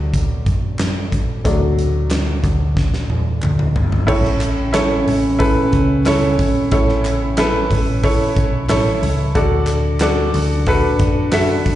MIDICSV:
0, 0, Header, 1, 5, 480
1, 0, Start_track
1, 0, Key_signature, 2, "major"
1, 0, Tempo, 658545
1, 1057, Time_signature, 4, 2, 24, 8
1, 8567, End_track
2, 0, Start_track
2, 0, Title_t, "Upright piano"
2, 0, Program_c, 0, 0
2, 0, Control_c, 0, 64, 127
2, 0, Note_on_c, 0, 54, 48
2, 0, Note_on_c, 0, 57, 47
2, 0, Note_on_c, 0, 62, 53
2, 1053, Note_off_c, 0, 54, 0
2, 1053, Note_on_c, 0, 54, 52
2, 1058, Note_off_c, 0, 57, 0
2, 1058, Note_on_c, 0, 57, 47
2, 1062, Note_off_c, 0, 62, 0
2, 1062, Note_on_c, 0, 62, 57
2, 1746, Note_off_c, 0, 54, 0
2, 1748, Note_off_c, 0, 57, 0
2, 1750, Note_off_c, 0, 62, 0
2, 2965, Note_on_c, 0, 64, 78
2, 2967, Note_on_c, 0, 45, 69
2, 2972, Note_on_c, 0, 69, 66
2, 2974, Note_on_c, 0, 73, 82
2, 2985, Control_c, 0, 64, 0
2, 3124, Control_c, 0, 64, 127
2, 3400, Note_off_c, 0, 64, 0
2, 3404, Note_off_c, 0, 69, 0
2, 3405, Note_off_c, 0, 73, 0
2, 3445, Note_on_c, 0, 64, 85
2, 3453, Note_on_c, 0, 69, 77
2, 3454, Note_on_c, 0, 73, 90
2, 3663, Note_off_c, 0, 45, 0
2, 3881, Note_off_c, 0, 64, 0
2, 3885, Note_off_c, 0, 69, 0
2, 3885, Note_off_c, 0, 73, 0
2, 3926, Note_on_c, 0, 64, 81
2, 3930, Note_on_c, 0, 69, 73
2, 3932, Note_on_c, 0, 71, 93
2, 4361, Note_off_c, 0, 64, 0
2, 4363, Note_off_c, 0, 69, 0
2, 4364, Note_off_c, 0, 71, 0
2, 4418, Note_on_c, 0, 64, 82
2, 4423, Note_on_c, 0, 69, 77
2, 4426, Note_on_c, 0, 73, 92
2, 4847, Note_off_c, 0, 64, 0
2, 4850, Note_off_c, 0, 69, 0
2, 4851, Note_off_c, 0, 73, 0
2, 4896, Note_on_c, 0, 64, 85
2, 4899, Note_on_c, 0, 69, 71
2, 4901, Note_on_c, 0, 45, 67
2, 4903, Note_on_c, 0, 73, 87
2, 5326, Note_off_c, 0, 64, 0
2, 5328, Note_off_c, 0, 69, 0
2, 5330, Note_off_c, 0, 73, 0
2, 5377, Note_on_c, 0, 64, 88
2, 5381, Note_on_c, 0, 69, 83
2, 5389, Note_on_c, 0, 71, 99
2, 5590, Note_off_c, 0, 45, 0
2, 5807, Note_off_c, 0, 64, 0
2, 5809, Note_off_c, 0, 69, 0
2, 5813, Note_off_c, 0, 71, 0
2, 5856, Note_on_c, 0, 64, 86
2, 5858, Note_on_c, 0, 69, 75
2, 5863, Note_on_c, 0, 73, 96
2, 6286, Note_off_c, 0, 64, 0
2, 6287, Note_off_c, 0, 69, 0
2, 6290, Note_off_c, 0, 73, 0
2, 6337, Note_on_c, 0, 64, 84
2, 6341, Note_on_c, 0, 69, 75
2, 6344, Note_on_c, 0, 73, 94
2, 6767, Note_off_c, 0, 64, 0
2, 6769, Note_off_c, 0, 69, 0
2, 6770, Note_off_c, 0, 73, 0
2, 6815, Note_on_c, 0, 66, 78
2, 6816, Note_on_c, 0, 50, 70
2, 6816, Note_on_c, 0, 69, 77
2, 6823, Note_on_c, 0, 74, 90
2, 6827, Control_c, 0, 64, 0
2, 6970, Control_c, 0, 64, 127
2, 7246, Note_off_c, 0, 66, 0
2, 7246, Note_off_c, 0, 69, 0
2, 7250, Note_off_c, 0, 74, 0
2, 7297, Note_on_c, 0, 66, 87
2, 7304, Note_on_c, 0, 69, 80
2, 7306, Note_on_c, 0, 74, 99
2, 7508, Note_off_c, 0, 50, 0
2, 7727, Note_off_c, 0, 66, 0
2, 7730, Note_off_c, 0, 69, 0
2, 7731, Note_off_c, 0, 74, 0
2, 7777, Note_on_c, 0, 66, 83
2, 7781, Note_on_c, 0, 69, 83
2, 7785, Note_on_c, 0, 71, 99
2, 8207, Note_off_c, 0, 66, 0
2, 8209, Note_off_c, 0, 69, 0
2, 8211, Note_off_c, 0, 71, 0
2, 8254, Note_on_c, 0, 66, 84
2, 8257, Note_on_c, 0, 69, 75
2, 8259, Note_on_c, 0, 76, 100
2, 8567, Note_off_c, 0, 66, 0
2, 8567, Note_off_c, 0, 69, 0
2, 8567, Note_off_c, 0, 76, 0
2, 8567, End_track
3, 0, Start_track
3, 0, Title_t, "French horn section"
3, 0, Program_c, 1, 60
3, 2973, Note_on_c, 1, 49, 75
3, 2973, Note_on_c, 1, 61, 80
3, 6546, Note_off_c, 1, 61, 0
3, 6547, Note_off_c, 1, 49, 0
3, 6818, Note_on_c, 1, 50, 77
3, 6822, Note_on_c, 1, 62, 88
3, 8567, Note_off_c, 1, 50, 0
3, 8567, Note_off_c, 1, 62, 0
3, 8567, End_track
4, 0, Start_track
4, 0, Title_t, "Picked electric bass"
4, 0, Program_c, 2, 34
4, 0, Note_on_c, 2, 38, 97
4, 191, Note_off_c, 2, 38, 0
4, 339, Note_on_c, 2, 42, 78
4, 789, Note_off_c, 2, 42, 0
4, 1061, Note_on_c, 2, 38, 102
4, 1750, Note_off_c, 2, 38, 0
4, 1776, Note_on_c, 2, 38, 103
4, 2111, Note_off_c, 2, 38, 0
4, 2259, Note_on_c, 2, 40, 82
4, 2481, Note_off_c, 2, 40, 0
4, 2500, Note_on_c, 2, 38, 83
4, 2722, Note_off_c, 2, 38, 0
4, 2739, Note_on_c, 2, 31, 101
4, 2961, Note_off_c, 2, 31, 0
4, 2976, Note_on_c, 2, 33, 101
4, 3667, Note_off_c, 2, 33, 0
4, 3698, Note_on_c, 2, 33, 106
4, 4032, Note_off_c, 2, 33, 0
4, 4177, Note_on_c, 2, 37, 86
4, 4628, Note_off_c, 2, 37, 0
4, 4897, Note_on_c, 2, 33, 97
4, 5588, Note_off_c, 2, 33, 0
4, 5620, Note_on_c, 2, 33, 97
4, 5953, Note_off_c, 2, 33, 0
4, 6101, Note_on_c, 2, 35, 87
4, 6322, Note_off_c, 2, 35, 0
4, 6339, Note_on_c, 2, 33, 85
4, 6562, Note_off_c, 2, 33, 0
4, 6578, Note_on_c, 2, 37, 103
4, 6801, Note_off_c, 2, 37, 0
4, 6819, Note_on_c, 2, 38, 105
4, 7509, Note_off_c, 2, 38, 0
4, 7541, Note_on_c, 2, 38, 111
4, 7874, Note_off_c, 2, 38, 0
4, 8016, Note_on_c, 2, 42, 88
4, 8468, Note_off_c, 2, 42, 0
4, 8567, End_track
5, 0, Start_track
5, 0, Title_t, "Drums"
5, 99, Note_on_c, 9, 36, 91
5, 102, Note_on_c, 9, 42, 80
5, 172, Note_off_c, 9, 36, 0
5, 175, Note_off_c, 9, 42, 0
5, 338, Note_on_c, 9, 36, 92
5, 338, Note_on_c, 9, 42, 62
5, 411, Note_off_c, 9, 36, 0
5, 411, Note_off_c, 9, 42, 0
5, 575, Note_on_c, 9, 39, 79
5, 580, Note_on_c, 9, 38, 98
5, 580, Note_on_c, 9, 42, 68
5, 648, Note_off_c, 9, 39, 0
5, 652, Note_off_c, 9, 42, 0
5, 653, Note_off_c, 9, 38, 0
5, 819, Note_on_c, 9, 36, 92
5, 823, Note_on_c, 9, 42, 68
5, 892, Note_off_c, 9, 36, 0
5, 896, Note_off_c, 9, 42, 0
5, 1058, Note_on_c, 9, 36, 109
5, 1059, Note_on_c, 9, 42, 94
5, 1131, Note_off_c, 9, 36, 0
5, 1132, Note_off_c, 9, 42, 0
5, 1302, Note_on_c, 9, 42, 70
5, 1375, Note_off_c, 9, 42, 0
5, 1535, Note_on_c, 9, 39, 80
5, 1535, Note_on_c, 9, 42, 82
5, 1540, Note_on_c, 9, 38, 112
5, 1608, Note_off_c, 9, 39, 0
5, 1608, Note_off_c, 9, 42, 0
5, 1613, Note_off_c, 9, 38, 0
5, 1776, Note_on_c, 9, 36, 85
5, 1782, Note_on_c, 9, 42, 66
5, 1849, Note_off_c, 9, 36, 0
5, 1855, Note_off_c, 9, 42, 0
5, 2017, Note_on_c, 9, 36, 95
5, 2022, Note_on_c, 9, 38, 55
5, 2090, Note_off_c, 9, 36, 0
5, 2095, Note_off_c, 9, 38, 0
5, 2141, Note_on_c, 9, 38, 46
5, 2213, Note_off_c, 9, 38, 0
5, 2258, Note_on_c, 9, 48, 73
5, 2331, Note_off_c, 9, 48, 0
5, 2495, Note_on_c, 9, 39, 75
5, 2501, Note_on_c, 9, 47, 71
5, 2568, Note_off_c, 9, 39, 0
5, 2574, Note_off_c, 9, 47, 0
5, 2618, Note_on_c, 9, 45, 70
5, 2691, Note_off_c, 9, 45, 0
5, 2739, Note_on_c, 9, 43, 102
5, 2812, Note_off_c, 9, 43, 0
5, 2860, Note_on_c, 9, 43, 82
5, 2933, Note_off_c, 9, 43, 0
5, 2976, Note_on_c, 9, 36, 108
5, 2977, Note_on_c, 9, 49, 92
5, 3048, Note_off_c, 9, 36, 0
5, 3050, Note_off_c, 9, 49, 0
5, 3096, Note_on_c, 9, 38, 38
5, 3169, Note_off_c, 9, 38, 0
5, 3213, Note_on_c, 9, 39, 84
5, 3217, Note_on_c, 9, 44, 65
5, 3217, Note_on_c, 9, 46, 72
5, 3286, Note_off_c, 9, 39, 0
5, 3289, Note_off_c, 9, 46, 0
5, 3290, Note_off_c, 9, 44, 0
5, 3452, Note_on_c, 9, 46, 86
5, 3456, Note_on_c, 9, 44, 67
5, 3457, Note_on_c, 9, 38, 126
5, 3459, Note_on_c, 9, 39, 92
5, 3525, Note_off_c, 9, 46, 0
5, 3529, Note_off_c, 9, 44, 0
5, 3530, Note_off_c, 9, 38, 0
5, 3532, Note_off_c, 9, 39, 0
5, 3698, Note_on_c, 9, 44, 62
5, 3700, Note_on_c, 9, 46, 69
5, 3770, Note_off_c, 9, 44, 0
5, 3773, Note_off_c, 9, 46, 0
5, 3933, Note_on_c, 9, 44, 65
5, 3935, Note_on_c, 9, 46, 87
5, 3937, Note_on_c, 9, 36, 104
5, 4006, Note_off_c, 9, 44, 0
5, 4008, Note_off_c, 9, 46, 0
5, 4009, Note_off_c, 9, 36, 0
5, 4173, Note_on_c, 9, 44, 71
5, 4173, Note_on_c, 9, 46, 66
5, 4176, Note_on_c, 9, 36, 94
5, 4246, Note_off_c, 9, 44, 0
5, 4246, Note_off_c, 9, 46, 0
5, 4249, Note_off_c, 9, 36, 0
5, 4416, Note_on_c, 9, 39, 81
5, 4417, Note_on_c, 9, 38, 99
5, 4417, Note_on_c, 9, 44, 64
5, 4417, Note_on_c, 9, 46, 75
5, 4489, Note_off_c, 9, 39, 0
5, 4490, Note_off_c, 9, 38, 0
5, 4490, Note_off_c, 9, 44, 0
5, 4490, Note_off_c, 9, 46, 0
5, 4655, Note_on_c, 9, 44, 68
5, 4658, Note_on_c, 9, 36, 104
5, 4658, Note_on_c, 9, 46, 77
5, 4728, Note_off_c, 9, 44, 0
5, 4730, Note_off_c, 9, 46, 0
5, 4731, Note_off_c, 9, 36, 0
5, 4894, Note_on_c, 9, 46, 103
5, 4895, Note_on_c, 9, 44, 65
5, 4898, Note_on_c, 9, 36, 114
5, 4967, Note_off_c, 9, 46, 0
5, 4968, Note_off_c, 9, 44, 0
5, 4971, Note_off_c, 9, 36, 0
5, 5020, Note_on_c, 9, 38, 38
5, 5093, Note_off_c, 9, 38, 0
5, 5139, Note_on_c, 9, 39, 79
5, 5142, Note_on_c, 9, 44, 62
5, 5142, Note_on_c, 9, 46, 75
5, 5212, Note_off_c, 9, 39, 0
5, 5215, Note_off_c, 9, 44, 0
5, 5215, Note_off_c, 9, 46, 0
5, 5372, Note_on_c, 9, 46, 85
5, 5376, Note_on_c, 9, 44, 61
5, 5377, Note_on_c, 9, 38, 118
5, 5378, Note_on_c, 9, 39, 83
5, 5445, Note_off_c, 9, 46, 0
5, 5449, Note_off_c, 9, 38, 0
5, 5449, Note_off_c, 9, 44, 0
5, 5451, Note_off_c, 9, 39, 0
5, 5617, Note_on_c, 9, 36, 83
5, 5619, Note_on_c, 9, 44, 61
5, 5622, Note_on_c, 9, 46, 69
5, 5690, Note_off_c, 9, 36, 0
5, 5692, Note_off_c, 9, 44, 0
5, 5695, Note_off_c, 9, 46, 0
5, 5854, Note_on_c, 9, 44, 65
5, 5856, Note_on_c, 9, 46, 81
5, 5858, Note_on_c, 9, 36, 97
5, 5927, Note_off_c, 9, 44, 0
5, 5929, Note_off_c, 9, 46, 0
5, 5931, Note_off_c, 9, 36, 0
5, 6096, Note_on_c, 9, 46, 69
5, 6097, Note_on_c, 9, 44, 66
5, 6098, Note_on_c, 9, 36, 98
5, 6169, Note_off_c, 9, 46, 0
5, 6170, Note_off_c, 9, 36, 0
5, 6170, Note_off_c, 9, 44, 0
5, 6337, Note_on_c, 9, 38, 103
5, 6337, Note_on_c, 9, 39, 86
5, 6337, Note_on_c, 9, 44, 60
5, 6337, Note_on_c, 9, 46, 74
5, 6410, Note_off_c, 9, 38, 0
5, 6410, Note_off_c, 9, 39, 0
5, 6410, Note_off_c, 9, 44, 0
5, 6410, Note_off_c, 9, 46, 0
5, 6580, Note_on_c, 9, 44, 74
5, 6582, Note_on_c, 9, 46, 73
5, 6652, Note_off_c, 9, 44, 0
5, 6655, Note_off_c, 9, 46, 0
5, 6817, Note_on_c, 9, 46, 103
5, 6818, Note_on_c, 9, 36, 117
5, 6818, Note_on_c, 9, 44, 67
5, 6890, Note_off_c, 9, 36, 0
5, 6890, Note_off_c, 9, 44, 0
5, 6890, Note_off_c, 9, 46, 0
5, 7047, Note_on_c, 9, 39, 79
5, 7057, Note_on_c, 9, 46, 73
5, 7058, Note_on_c, 9, 44, 64
5, 7120, Note_off_c, 9, 39, 0
5, 7130, Note_off_c, 9, 44, 0
5, 7130, Note_off_c, 9, 46, 0
5, 7291, Note_on_c, 9, 39, 92
5, 7291, Note_on_c, 9, 46, 87
5, 7294, Note_on_c, 9, 44, 68
5, 7295, Note_on_c, 9, 38, 120
5, 7364, Note_off_c, 9, 39, 0
5, 7364, Note_off_c, 9, 46, 0
5, 7367, Note_off_c, 9, 44, 0
5, 7368, Note_off_c, 9, 38, 0
5, 7534, Note_on_c, 9, 44, 66
5, 7537, Note_on_c, 9, 46, 73
5, 7607, Note_off_c, 9, 44, 0
5, 7610, Note_off_c, 9, 46, 0
5, 7771, Note_on_c, 9, 44, 64
5, 7773, Note_on_c, 9, 46, 86
5, 7775, Note_on_c, 9, 36, 98
5, 7844, Note_off_c, 9, 44, 0
5, 7846, Note_off_c, 9, 46, 0
5, 7848, Note_off_c, 9, 36, 0
5, 8012, Note_on_c, 9, 44, 69
5, 8012, Note_on_c, 9, 46, 68
5, 8015, Note_on_c, 9, 36, 103
5, 8085, Note_off_c, 9, 44, 0
5, 8085, Note_off_c, 9, 46, 0
5, 8088, Note_off_c, 9, 36, 0
5, 8251, Note_on_c, 9, 38, 101
5, 8251, Note_on_c, 9, 44, 66
5, 8251, Note_on_c, 9, 46, 74
5, 8254, Note_on_c, 9, 39, 84
5, 8324, Note_off_c, 9, 38, 0
5, 8324, Note_off_c, 9, 44, 0
5, 8324, Note_off_c, 9, 46, 0
5, 8327, Note_off_c, 9, 39, 0
5, 8497, Note_on_c, 9, 44, 71
5, 8498, Note_on_c, 9, 36, 100
5, 8499, Note_on_c, 9, 46, 77
5, 8567, Note_off_c, 9, 36, 0
5, 8567, Note_off_c, 9, 44, 0
5, 8567, Note_off_c, 9, 46, 0
5, 8567, End_track
0, 0, End_of_file